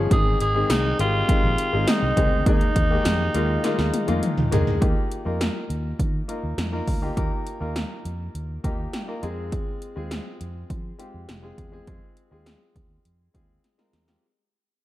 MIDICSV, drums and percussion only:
0, 0, Header, 1, 2, 480
1, 0, Start_track
1, 0, Tempo, 588235
1, 90, Time_signature, 4, 2, 24, 8
1, 12114, End_track
2, 0, Start_track
2, 0, Title_t, "Drums"
2, 90, Note_on_c, 9, 36, 127
2, 91, Note_on_c, 9, 42, 95
2, 172, Note_off_c, 9, 36, 0
2, 173, Note_off_c, 9, 42, 0
2, 330, Note_on_c, 9, 42, 83
2, 412, Note_off_c, 9, 42, 0
2, 569, Note_on_c, 9, 54, 70
2, 570, Note_on_c, 9, 38, 119
2, 572, Note_on_c, 9, 42, 100
2, 651, Note_off_c, 9, 38, 0
2, 651, Note_off_c, 9, 54, 0
2, 654, Note_off_c, 9, 42, 0
2, 811, Note_on_c, 9, 42, 82
2, 893, Note_off_c, 9, 42, 0
2, 1051, Note_on_c, 9, 36, 98
2, 1052, Note_on_c, 9, 42, 94
2, 1132, Note_off_c, 9, 36, 0
2, 1134, Note_off_c, 9, 42, 0
2, 1292, Note_on_c, 9, 42, 87
2, 1374, Note_off_c, 9, 42, 0
2, 1530, Note_on_c, 9, 38, 120
2, 1531, Note_on_c, 9, 42, 83
2, 1531, Note_on_c, 9, 54, 72
2, 1612, Note_off_c, 9, 38, 0
2, 1612, Note_off_c, 9, 54, 0
2, 1613, Note_off_c, 9, 42, 0
2, 1770, Note_on_c, 9, 36, 86
2, 1772, Note_on_c, 9, 42, 78
2, 1852, Note_off_c, 9, 36, 0
2, 1854, Note_off_c, 9, 42, 0
2, 2010, Note_on_c, 9, 36, 127
2, 2011, Note_on_c, 9, 42, 95
2, 2092, Note_off_c, 9, 36, 0
2, 2092, Note_off_c, 9, 42, 0
2, 2130, Note_on_c, 9, 42, 58
2, 2212, Note_off_c, 9, 42, 0
2, 2250, Note_on_c, 9, 36, 93
2, 2251, Note_on_c, 9, 42, 85
2, 2332, Note_off_c, 9, 36, 0
2, 2333, Note_off_c, 9, 42, 0
2, 2490, Note_on_c, 9, 54, 63
2, 2491, Note_on_c, 9, 38, 124
2, 2493, Note_on_c, 9, 42, 98
2, 2572, Note_off_c, 9, 38, 0
2, 2572, Note_off_c, 9, 54, 0
2, 2575, Note_off_c, 9, 42, 0
2, 2730, Note_on_c, 9, 42, 80
2, 2811, Note_off_c, 9, 42, 0
2, 2969, Note_on_c, 9, 38, 62
2, 2970, Note_on_c, 9, 42, 92
2, 3051, Note_off_c, 9, 38, 0
2, 3052, Note_off_c, 9, 42, 0
2, 3090, Note_on_c, 9, 38, 64
2, 3172, Note_off_c, 9, 38, 0
2, 3211, Note_on_c, 9, 48, 83
2, 3212, Note_on_c, 9, 42, 90
2, 3292, Note_off_c, 9, 48, 0
2, 3293, Note_off_c, 9, 42, 0
2, 3329, Note_on_c, 9, 42, 52
2, 3331, Note_on_c, 9, 48, 69
2, 3411, Note_off_c, 9, 42, 0
2, 3412, Note_off_c, 9, 48, 0
2, 3450, Note_on_c, 9, 42, 80
2, 3450, Note_on_c, 9, 47, 89
2, 3531, Note_off_c, 9, 42, 0
2, 3531, Note_off_c, 9, 47, 0
2, 3570, Note_on_c, 9, 45, 86
2, 3652, Note_off_c, 9, 45, 0
2, 3692, Note_on_c, 9, 42, 84
2, 3692, Note_on_c, 9, 43, 111
2, 3773, Note_off_c, 9, 42, 0
2, 3774, Note_off_c, 9, 43, 0
2, 3813, Note_on_c, 9, 43, 100
2, 3894, Note_off_c, 9, 43, 0
2, 3931, Note_on_c, 9, 36, 120
2, 3933, Note_on_c, 9, 42, 83
2, 4013, Note_off_c, 9, 36, 0
2, 4015, Note_off_c, 9, 42, 0
2, 4174, Note_on_c, 9, 42, 77
2, 4256, Note_off_c, 9, 42, 0
2, 4413, Note_on_c, 9, 38, 108
2, 4416, Note_on_c, 9, 42, 86
2, 4495, Note_off_c, 9, 38, 0
2, 4497, Note_off_c, 9, 42, 0
2, 4653, Note_on_c, 9, 42, 75
2, 4735, Note_off_c, 9, 42, 0
2, 4891, Note_on_c, 9, 36, 82
2, 4893, Note_on_c, 9, 42, 82
2, 4973, Note_off_c, 9, 36, 0
2, 4975, Note_off_c, 9, 42, 0
2, 5132, Note_on_c, 9, 42, 79
2, 5214, Note_off_c, 9, 42, 0
2, 5370, Note_on_c, 9, 38, 102
2, 5371, Note_on_c, 9, 42, 74
2, 5452, Note_off_c, 9, 38, 0
2, 5453, Note_off_c, 9, 42, 0
2, 5610, Note_on_c, 9, 46, 71
2, 5611, Note_on_c, 9, 36, 73
2, 5692, Note_off_c, 9, 36, 0
2, 5692, Note_off_c, 9, 46, 0
2, 5851, Note_on_c, 9, 36, 109
2, 5852, Note_on_c, 9, 42, 84
2, 5933, Note_off_c, 9, 36, 0
2, 5934, Note_off_c, 9, 42, 0
2, 6092, Note_on_c, 9, 42, 68
2, 6174, Note_off_c, 9, 42, 0
2, 6331, Note_on_c, 9, 38, 102
2, 6333, Note_on_c, 9, 42, 83
2, 6412, Note_off_c, 9, 38, 0
2, 6414, Note_off_c, 9, 42, 0
2, 6572, Note_on_c, 9, 42, 72
2, 6654, Note_off_c, 9, 42, 0
2, 6815, Note_on_c, 9, 42, 80
2, 6896, Note_off_c, 9, 42, 0
2, 7052, Note_on_c, 9, 36, 78
2, 7054, Note_on_c, 9, 42, 75
2, 7134, Note_off_c, 9, 36, 0
2, 7135, Note_off_c, 9, 42, 0
2, 7290, Note_on_c, 9, 38, 95
2, 7291, Note_on_c, 9, 42, 70
2, 7372, Note_off_c, 9, 38, 0
2, 7373, Note_off_c, 9, 42, 0
2, 7531, Note_on_c, 9, 42, 71
2, 7612, Note_off_c, 9, 42, 0
2, 7771, Note_on_c, 9, 42, 82
2, 7772, Note_on_c, 9, 36, 111
2, 7853, Note_off_c, 9, 36, 0
2, 7853, Note_off_c, 9, 42, 0
2, 8012, Note_on_c, 9, 42, 72
2, 8093, Note_off_c, 9, 42, 0
2, 8251, Note_on_c, 9, 38, 98
2, 8253, Note_on_c, 9, 42, 83
2, 8332, Note_off_c, 9, 38, 0
2, 8335, Note_off_c, 9, 42, 0
2, 8493, Note_on_c, 9, 42, 74
2, 8574, Note_off_c, 9, 42, 0
2, 8732, Note_on_c, 9, 36, 82
2, 8733, Note_on_c, 9, 42, 74
2, 8813, Note_off_c, 9, 36, 0
2, 8815, Note_off_c, 9, 42, 0
2, 8972, Note_on_c, 9, 42, 79
2, 9054, Note_off_c, 9, 42, 0
2, 9210, Note_on_c, 9, 38, 101
2, 9211, Note_on_c, 9, 42, 69
2, 9292, Note_off_c, 9, 38, 0
2, 9293, Note_off_c, 9, 42, 0
2, 9450, Note_on_c, 9, 36, 70
2, 9451, Note_on_c, 9, 42, 68
2, 9532, Note_off_c, 9, 36, 0
2, 9532, Note_off_c, 9, 42, 0
2, 9689, Note_on_c, 9, 42, 80
2, 9690, Note_on_c, 9, 36, 111
2, 9771, Note_off_c, 9, 42, 0
2, 9772, Note_off_c, 9, 36, 0
2, 9930, Note_on_c, 9, 42, 68
2, 10011, Note_off_c, 9, 42, 0
2, 10170, Note_on_c, 9, 38, 99
2, 10172, Note_on_c, 9, 42, 79
2, 10252, Note_off_c, 9, 38, 0
2, 10254, Note_off_c, 9, 42, 0
2, 10409, Note_on_c, 9, 36, 78
2, 10410, Note_on_c, 9, 42, 66
2, 10491, Note_off_c, 9, 36, 0
2, 10492, Note_off_c, 9, 42, 0
2, 10651, Note_on_c, 9, 42, 79
2, 10732, Note_off_c, 9, 42, 0
2, 10891, Note_on_c, 9, 36, 76
2, 10891, Note_on_c, 9, 42, 72
2, 10972, Note_off_c, 9, 36, 0
2, 10973, Note_off_c, 9, 42, 0
2, 11132, Note_on_c, 9, 38, 49
2, 11132, Note_on_c, 9, 42, 70
2, 11213, Note_off_c, 9, 38, 0
2, 11213, Note_off_c, 9, 42, 0
2, 11252, Note_on_c, 9, 38, 52
2, 11333, Note_off_c, 9, 38, 0
2, 11370, Note_on_c, 9, 38, 73
2, 11370, Note_on_c, 9, 42, 65
2, 11451, Note_off_c, 9, 42, 0
2, 11452, Note_off_c, 9, 38, 0
2, 11489, Note_on_c, 9, 38, 77
2, 11571, Note_off_c, 9, 38, 0
2, 12114, End_track
0, 0, End_of_file